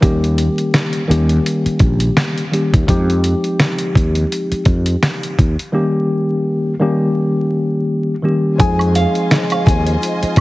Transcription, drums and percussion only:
0.02 kick, closed hi-hat
0.24 closed hi-hat
0.38 closed hi-hat
0.58 closed hi-hat
0.74 snare, closed hi-hat
0.93 closed hi-hat
1.11 closed hi-hat
1.29 closed hi-hat
1.46 closed hi-hat
1.66 closed hi-hat
1.79 kick, closed hi-hat
2.00 closed hi-hat
2.17 snare, closed hi-hat
2.38 closed hi-hat
2.53 closed hi-hat
2.74 kick, closed hi-hat
2.88 kick, closed hi-hat
3.10 closed hi-hat
3.24 closed hi-hat
3.44 closed hi-hat
3.60 snare, closed hi-hat
3.78 closed hi-hat
3.95 kick, closed hi-hat
4.15 closed hi-hat
4.32 closed hi-hat
4.52 closed hi-hat
4.65 kick, closed hi-hat
4.86 closed hi-hat
5.03 snare, closed hi-hat
5.23 closed hi-hat
5.39 kick, closed hi-hat
5.59 closed hi-hat
8.60 kick, closed hi-hat, shaker
8.79 closed hi-hat, high woodblock
8.95 closed hi-hat, shaker
9.15 closed hi-hat
9.31 snare, closed hi-hat, shaker
9.50 closed hi-hat, high woodblock
9.67 kick, closed hi-hat, shaker
9.87 closed hi-hat
10.02 closed hi-hat, shaker
10.23 closed hi-hat
10.36 kick, closed hi-hat

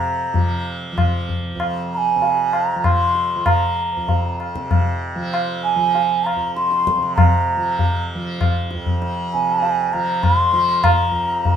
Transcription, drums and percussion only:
0.34 tabla tin, tabla ge
0.98 tabla na, tabla ge
1.29 tabla ge
1.60 tabla na
2.22 tabla tin
2.53 tabla na
2.84 tabla na, tabla ge
3.15 tabla te
3.46 tabla na, tabla ge
4.08 tabla tin, tabla ge
4.40 tabla na
4.55 tabla ke
4.71 tabla na, tabla ge
5.34 tabla na
5.95 tabla tin
6.26 tabla na
6.57 tabla te
6.72 tabla te
6.87 tabla ke
7.03 tabla te
7.18 tabla na, tabla ge
7.79 tabla tin, tabla ge
8.41 tabla na, tabla ge
8.71 tabla te
8.86 tabla ge
9.02 tabla te
9.32 tabla te
9.62 tabla tin
9.93 tabla na
10.23 tabla na, tabla ge
10.54 tabla te
10.84 tabla na, tabla ge
11.45 tabla tin, tabla ge

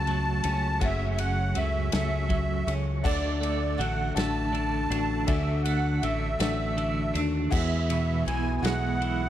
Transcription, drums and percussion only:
0.07 ride
0.44 ride
0.81 kick, ride
1.18 ride
1.55 ride
1.92 snare, ride
2.30 kick, ride
2.68 ride
3.05 kick, crash
3.43 ride
3.81 ride
4.17 snare, ride
4.54 ride
4.91 ride
5.28 kick, ride
5.65 ride
6.03 ride
6.40 snare, ride
6.78 ride
7.15 ride
7.52 kick, crash
7.90 ride
8.28 ride
8.65 snare, ride
9.02 ride

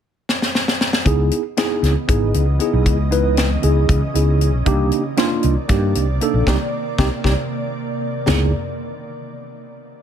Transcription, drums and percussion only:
0.29 snare
0.42 snare
0.55 snare
0.68 snare
0.81 snare
0.93 snare
1.06 kick, closed hi-hat
1.31 closed hi-hat
1.57 snare, closed hi-hat
1.84 snare, closed hi-hat
2.09 kick, closed hi-hat
2.34 closed hi-hat
2.60 closed hi-hat
2.86 kick, closed hi-hat
3.12 closed hi-hat
3.37 snare, closed hi-hat
3.63 closed hi-hat
3.89 kick, closed hi-hat
4.15 closed hi-hat
4.41 closed hi-hat
4.66 kick, closed hi-hat
4.92 closed hi-hat
5.17 snare, closed hi-hat
5.43 closed hi-hat
5.69 kick, snare, closed hi-hat
5.95 closed hi-hat
6.21 closed hi-hat
6.47 kick, snare
6.98 kick, snare
7.24 kick, snare
8.28 snare, floor tom, crash

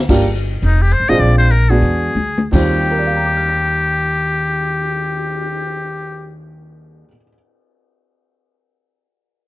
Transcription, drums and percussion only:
0.09 kick, crash
0.36 closed hi-hat
0.52 open hi-hat
0.62 kick, open hi-hat
0.91 closed hi-hat
1.09 open hi-hat
1.20 kick, open hi-hat
1.50 closed hi-hat
1.70 open hi-hat
1.82 kick, open hi-hat
2.17 high tom
2.38 high tom
2.53 kick, crash
2.76 cymbal swell

